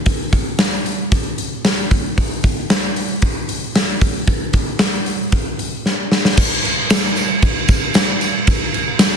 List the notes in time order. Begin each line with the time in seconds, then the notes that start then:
0.06 kick, open hi-hat
0.33 kick, open hi-hat
0.59 snare, open hi-hat
0.86 open hi-hat
1.12 kick, open hi-hat
1.38 open hi-hat
1.65 snare, open hi-hat
1.91 kick, open hi-hat
2.18 kick, open hi-hat
2.44 kick, open hi-hat
2.70 snare, open hi-hat
2.96 open hi-hat
3.22 kick, open hi-hat
3.49 open hi-hat
3.75 snare, open hi-hat
4.01 kick, open hi-hat
4.28 kick, open hi-hat
4.53 kick, open hi-hat
4.79 snare, open hi-hat
5.06 open hi-hat
5.32 kick, open hi-hat
5.59 open hi-hat
5.86 snare
6.12 snare
6.25 snare
6.37 kick, crash, tambourine
6.64 tambourine, crash
6.90 snare, tambourine, crash
7.16 tambourine, crash
7.42 kick, crash
7.68 kick, tambourine, crash
7.94 snare, tambourine, crash
8.21 tambourine, crash
8.47 kick, tambourine, crash
8.74 tambourine, crash
8.99 snare, tambourine, crash